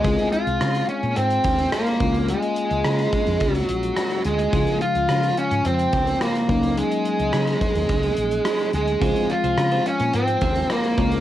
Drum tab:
HH |xxxxxxxxxxxxxxxx|xxxxxxxxxxxxxxxx|xxxxxxxxxxxxxxxx|xxxxxxxxxxxxxxxx|
SD |----r-------r---|----r-------r---|----r-------r---|----r-------r---|
BD |o---------o---o-|------o-o-------|o---------o---o-|------o-o-------|

HH |xxxxxxxxxxxxxxxx|
SD |----r-------r---|
BD |o---------o---o-|